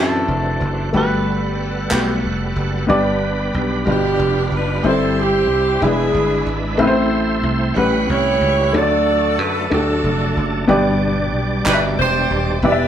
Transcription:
0.00 0.26 F#2 medium
0.00 0.96 D3 medium
0.00 0.90 E3 medium
0.00 0.90 C4 medium
0.00 0.96 C4 medium
0.00 0.90 D4 soft
0.00 0.96 E4 medium
0.00 0.90 F#4 medium
0.00 0.94 F#4 medium
0.00 0.97 A4 medium
0.00 0.95 D5 medium
0.00 0.79 E5 medium
0.28 0.58 F1 medium
0.61 0.91 F#1 medium
0.93 1.87 G1 medium
0.93 1.88 G2 medium
0.93 2.85 G3 medium
0.93 1.75 A3 medium
0.93 2.85 B3 medium
0.93 1.76 F#4 medium
0.93 1.76 G4 medium
0.93 2.85 A4 medium
0.93 1.77 B4 medium
0.93 2.86 F#5 soft
0.97 2.22 B4 medium
1.90 2.26 B1 medium
1.90 2.73 A3 medium
1.90 2.73 F#4 medium
1.90 2.74 G4 medium
1.90 2.74 B4 medium
1.90 clap medium
2.24 2.54 F1 medium
2.56 2.86 F#1 medium
2.87 3.50 G1 medium
2.87 3.82 G2 medium
2.87 3.85 G3 medium
2.87 3.70 B3 medium
2.87 3.87 B3 medium
2.87 3.71 D4 medium
2.87 3.85 D4 medium
2.87 3.71 G4 medium
2.87 2.96 A4 medium
2.87 3.71 D5 medium
2.96 3.90 B4 medium
3.54 3.84 B1 medium
3.85 4.16 G1 medium
3.85 4.80 B2 medium
3.85 4.68 G3 medium
3.85 4.83 G3 medium
3.85 4.81 B3 medium
3.85 4.68 D4 soft
3.85 4.84 D4 soft
3.85 4.81 D4 medium
3.85 4.83 F4 soft
3.85 4.69 F4 soft
3.85 3.93 A#4 soft
3.85 4.69 B4 medium
3.91 4.49 G4 medium
3.91 4.87 B4 medium
4.19 4.49 F1 medium
4.52 4.81 F#1 medium
4.52 4.85 B4 medium
4.83 5.49 G1 medium
4.83 5.78 G2 medium
4.83 5.65 G3 medium
4.83 5.81 G3 medium
4.83 5.81 C4 medium
4.83 5.66 C4 medium
4.83 5.18 C4 medium
4.83 4.90 D#4 soft
4.83 5.66 E4 medium
4.83 5.18 E4 medium
4.83 5.18 A4 medium
4.83 5.81 C5 medium
4.83 5.66 C5 medium
4.90 5.79 E4 medium
5.19 5.79 C4 medium
5.19 5.79 E4 medium
5.19 5.83 G4 medium
5.49 5.79 C2 medium
5.80 6.12 E1 medium
5.80 6.75 E3 medium
5.80 6.78 G#3 medium
5.80 6.63 G#3 medium
5.80 6.76 B3 medium
5.80 6.79 D4 soft
5.80 6.63 D4 medium
5.80 6.76 E4 soft
5.80 6.64 E4 medium
5.80 6.56 G#4 medium
5.80 6.78 B4 medium
5.80 6.64 B4 medium
5.84 6.76 D4 medium
6.14 6.44 G1 medium
6.46 6.76 G#1 medium
6.77 7.40 A1 loud
6.77 7.73 A2 medium
6.77 7.76 A3 medium
6.77 7.60 A3 medium
6.77 7.75 C4 medium
6.77 7.61 C4 medium
6.77 7.76 E4 medium
6.77 7.61 E4 medium
6.77 6.86 B4 medium
6.77 7.75 C5 medium
6.87 7.65 C5 medium
7.43 7.73 C2 medium
7.74 8.06 A1 medium
7.74 8.70 A2 medium
7.74 8.73 G3 medium
7.74 8.58 G3 medium
7.74 8.73 C#4 soft
7.74 8.58 C#4 medium
7.74 8.09 E4 medium
7.74 8.09 G4 medium
7.74 8.73 B4 medium
7.74 8.07 B4 medium
7.74 8.73 F#5 soft
7.74 8.59 F#5 medium
7.79 8.59 B4 medium
8.09 8.39 C2 medium
8.09 8.71 E4 medium
8.09 8.71 G4 medium
8.09 8.74 C#5 loud
8.41 8.71 C#2 medium
8.73 9.39 D2 medium
8.73 9.67 D3 medium
8.73 10.65 F#3 medium
8.73 9.55 A3 medium
8.73 10.65 A3 medium
8.73 9.56 D4 medium
8.73 10.65 D4 soft
8.73 9.56 F#4 medium
8.73 9.68 F#4 medium
8.73 10.65 A4 medium
8.73 9.68 A4 medium
8.73 8.81 C#5 medium
8.73 9.36 D5 medium
8.82 9.60 D5 medium
9.39 9.69 F#2 medium
9.39 9.72 B4 medium
9.70 10.01 D2 medium
9.70 10.52 A3 medium
9.70 10.53 D4 medium
9.70 10.66 D4 soft
9.70 10.53 F#4 medium
9.70 10.66 F#4 soft
9.70 9.79 G4 soft
9.70 10.46 A4 medium
9.79 10.57 A4 medium
10.04 10.34 F1 medium
10.37 10.66 F#1 medium
10.67 11.33 G1 medium
10.67 11.62 G2 medium
10.67 12.59 B2 medium
10.67 12.59 G3 medium
10.67 11.50 B3 medium
10.67 12.59 D4 medium
10.67 11.50 D4 medium
10.67 11.50 G4 medium
10.67 12.59 D5 medium
10.67 11.51 D5 medium
11.33 11.63 B1 medium
11.65 11.96 G1 medium
11.65 12.47 B2 medium
11.65 12.48 D4 medium
11.65 12.48 G4 medium
11.65 11.82 B4 medium
11.65 11.73 D5 medium
11.65 clap medium
11.74 12.52 E5 medium
11.99 12.28 E1 medium
11.99 12.60 G4 medium
11.99 12.60 C5 medium
12.30 12.61 D#1 medium
12.62 12.88 E1 loud
12.62 12.88 E3 medium
12.62 12.70 F#3 soft
12.62 12.88 B3 medium
12.62 12.88 E4 medium
12.62 12.88 G4 medium
12.62 12.88 B4 medium
12.62 12.88 D5 medium
12.62 12.71 D5 medium
12.66 12.88 G3 medium
12.66 12.88 B4 medium
12.72 12.88 E5 medium

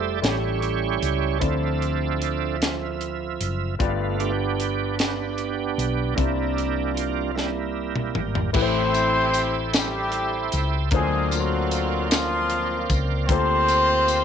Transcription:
0.00 0.20 F1 medium
0.00 0.20 G3 soft
0.00 0.23 G3 medium
0.00 0.20 A3 soft
0.00 0.21 E4 medium
0.00 0.23 F4 medium
0.00 0.19 G4 soft
0.00 0.19 A4 soft
0.00 0.24 A4 medium
0.00 0.12 C5 medium
0.00 0.20 E5 medium
0.17 0.24 D5 medium
0.22 0.99 A1 medium
0.22 1.38 A2 medium
0.22 1.38 G3 soft
0.22 1.42 A3 medium
0.22 1.38 C#4 soft
0.22 1.39 E4 soft
0.22 0.61 E4 medium
0.22 1.42 G4 soft
0.22 0.61 G4 medium
0.22 0.59 C#5 medium
0.22 1.42 C#5 medium
0.22 snare loud
0.22 closed hi-hat medium
0.60 1.38 E4 medium
0.60 1.38 G4 medium
0.60 1.43 C#5 medium
0.60 closed hi-hat soft
1.02 1.39 C#2 medium
1.02 closed hi-hat medium
1.39 3.36 D2 medium
1.39 2.57 D3 soft
1.39 3.75 F3 soft
1.39 3.75 C4 medium
1.39 2.57 C4 soft
1.39 2.56 D4 soft
1.39 3.75 E4 soft
1.39 3.76 F4 soft
1.39 2.56 A4 medium
1.39 3.76 D5 medium
1.39 3.75 E5 medium
1.39 kick medium
1.39 closed hi-hat medium
1.82 closed hi-hat soft
2.22 closed hi-hat medium
2.62 snare medium
2.62 closed hi-hat medium
3.01 closed hi-hat soft
3.40 3.77 F#1 medium
3.40 closed hi-hat medium
3.79 5.74 G1 medium
3.79 4.95 G2 medium
3.79 4.32 A3 soft
3.79 6.13 B3 medium
3.79 4.19 B3 soft
3.79 6.13 F4 medium
3.79 4.33 F4 medium
3.79 6.14 G4 medium
3.79 6.14 D5 medium
3.79 kick medium
3.79 closed hi-hat medium
4.20 4.98 B3 soft
4.20 4.99 D4 medium
4.20 4.95 G4 medium
4.20 closed hi-hat soft
4.60 closed hi-hat medium
4.99 6.14 B3 medium
4.99 6.14 D4 medium
4.99 6.14 G4 medium
4.99 snare medium
4.99 closed hi-hat medium
5.38 closed hi-hat soft
5.78 6.14 B1 medium
5.78 closed hi-hat medium
6.15 8.12 C2 medium
6.15 7.32 C3 medium
6.15 7.31 G3 medium
6.15 7.31 A#3 medium
6.15 8.50 C4 medium
6.15 7.31 D4 soft
6.15 6.92 E4 medium
6.15 8.51 E4 medium
6.15 8.51 A#4 soft
6.15 kick medium
6.15 closed hi-hat medium
6.19 8.52 D5 medium
6.58 closed hi-hat soft
6.94 7.36 F4 medium
6.94 closed hi-hat medium
7.35 8.51 G3 soft
7.35 8.50 A#3 soft
7.35 8.20 E4 medium
7.35 snare soft
7.96 mid tom medium
8.15 8.52 G#1 medium
8.15 mid tom medium
8.35 floor tom medium
8.53 10.48 A1 medium
8.53 9.69 A2 medium
8.53 10.87 A3 medium
8.53 9.70 C4 loud
8.53 10.87 E4 medium
8.53 9.70 E4 medium
8.53 10.88 G4 medium
8.53 9.70 G4 medium
8.53 10.90 A4 medium
8.53 8.62 B4 medium
8.53 9.70 C5 loud
8.53 10.89 E5 medium
8.53 10.89 G5 medium
8.53 13.24 C6 medium
8.53 kick loud
8.53 crash medium
8.62 10.92 C5 medium
8.94 closed hi-hat soft
8.94 tambourine medium
9.33 closed hi-hat soft
9.33 tambourine soft
9.74 10.54 G3 medium
9.74 10.89 C4 medium
9.74 10.89 E4 medium
9.74 10.54 G4 medium
9.74 snare loud
9.74 closed hi-hat medium
9.74 tambourine medium
10.12 closed hi-hat soft
10.52 10.89 C#2 medium
10.52 closed hi-hat medium
10.52 tambourine soft
10.91 12.85 D2 medium
10.91 12.07 D3 medium
10.91 11.30 G#3 medium
10.91 13.24 A#3 medium
10.91 14.24 A#3 medium
10.91 13.25 D4 medium
10.91 10.99 F4 soft
10.91 12.07 F4 medium
10.91 11.30 G#4 medium
10.91 13.26 C5 medium
10.91 13.26 D5 medium
10.91 13.26 F5 medium
10.91 kick loud
10.91 closed hi-hat medium
10.95 11.32 C4 medium
11.00 13.29 F#3 medium
11.31 12.06 F#3 medium
11.31 12.10 A#3 medium
11.31 12.10 C4 medium
11.31 12.06 F#4 loud
11.31 closed hi-hat soft
11.31 tambourine medium
11.71 closed hi-hat soft
11.71 tambourine soft
12.08 12.98 F3 medium
12.08 13.25 A#3 medium
12.08 13.25 C4 medium
12.08 12.98 F4 loud
12.08 snare loud
12.08 closed hi-hat medium
12.08 tambourine medium
12.50 closed hi-hat soft
12.89 13.26 C#2 medium
12.89 kick medium
12.89 closed hi-hat soft
12.89 tambourine soft
13.27 14.24 D2 medium
13.27 14.24 D3 medium
13.27 14.24 A#3 medium
13.27 14.24 C4 loud
13.27 14.24 F4 medium
13.27 14.24 G4 medium
13.27 14.24 A4 medium
13.27 14.24 C5 loud
13.27 14.24 F5 medium
13.27 14.24 A5 medium
13.27 14.24 C6 medium
13.27 kick loud
13.27 closed hi-hat medium
13.32 14.24 C5 medium
13.68 closed hi-hat soft
13.68 tambourine medium
14.08 closed hi-hat soft
14.08 tambourine medium

